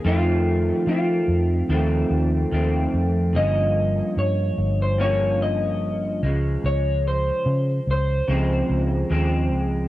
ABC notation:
X:1
M:4/4
L:1/16
Q:"Swing 16ths" 1/4=73
K:Dblyd
V:1 name="Clean electric guitar"
F4 F8- F2 z2 | e4 d3 c d2 e4 z2 | d2 c4 c8 z2 |]
V:2 name="Clean electric guitar" clef=bass
[F,,E,=A,C]4 [F,,E,A,C]4 [F,,E,A,C]4 [F,,E,A,C]4 | [G,,F,B,D]8 [G,,F,B,D]6 [D,F,A,]2- | [D,F,A,]8 [D,F,A,C]4 [D,F,A,C]4 |]
V:3 name="Fingered electric bass" clef=bass
F,,4 F,2 F,,2 E,,2 E,,2 E,,2 F,,2 | G,,,4 G,,2 G,,,8 D,,2 | D,,4 D,2 D,,2 D,,2 D,,2 E,,2 D,,2 |]